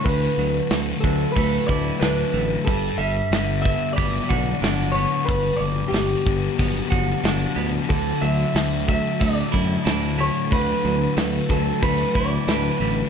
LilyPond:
<<
  \new Staff \with { instrumentName = "Clean electric guitar" } { \time 4/4 \key d \major \tempo 4 = 92 b'4. a'8 b'8 d''8 b'8. r16 | a'8 e''4 e''8 d''4. cis''8 | b'8 d''8 g'2~ g'8 r8 | a'8 e''4 e''8 d''4 r8 cis''8 |
b'4. a'8 b'8 d''8 b'8. r16 | }
  \new Staff \with { instrumentName = "Overdriven electric guitar" } { \time 4/4 \key d \major <d a d' e'>8 fis8 a8 fis8 a8 e'8 d'8 a8 | g8 g8 b4 b8 fis'8 d'8 b8~ | b4 b4 b8 fis'8 d'8 b8 | d8 fis8 a8 fis8 a8 e'8 d'8 a8 |
d8 fis8 a8 fis8 a8 e'8 d'8 a8 | }
  \new Staff \with { instrumentName = "Distorted electric guitar" } { \clef bass \time 4/4 \key d \major <d fis>4 d8 a8 fis8 d8 fis8 d8 | g,4 d8 b8 fis8 d8 fis8 d8 | g,4 d8 b8 fis8 d8 fis8 d8 | d4 d8 a8 fis8 d8 fis8 d8 |
d4 d8 a8 fis8 d8 fis8 d8 | }
  \new Staff \with { instrumentName = "Fingered electric bass" } { \clef bass \time 4/4 \key d \major d,8 d,8 d,8 d,8 d,8 d,8 d,8 a,,8 | g,,8 g,,8 g,,4 g,,8 b,,8 g,,4 | g,,8 g,,8 g,,8 g,,8 g,,8 g,,8 g,,8 d,8 | d,8 d,8 d,4 d,8 fis,8 d,4 |
d,8 d,8 d,8 d,8 d,8 d,8 d,8 a,,8 | }
  \new DrumStaff \with { instrumentName = "Drums" } \drummode { \time 4/4 <hho bd>4 <hho sn>8 bd8 <hho bd>8 bd8 <hho sn>4 | <hho bd>4 <hho sn>8 bd8 <hho bd>8 bd8 <hho sn>4 | <hho bd>4 <hho sn>8 bd8 <hho bd>8 bd8 <hho sn>4 | <hho bd>4 <hho sn>8 bd8 <hho bd>8 bd8 <hho sn>4 |
<hho bd>4 <hho sn>8 bd8 <hho bd>8 bd8 <hho sn>4 | }
>>